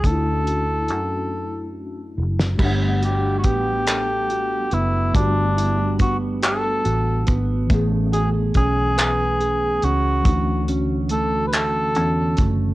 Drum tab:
CC |------------|x-----------|------------|------------|
HH |x-x-x-------|--x-x-x-x-x-|x-x-x-x-x-x-|x-x-x-x-x-x-|
CP |------------|------x-----|------x-----|------x-----|
SD |-----------o|------------|------------|------------|
BD |o-----------|o---o-------|o---o-----o-|o---o-------|

CC |------------|
HH |x-x-x-x-x-x-|
CP |------x-----|
SD |------------|
BD |o---------o-|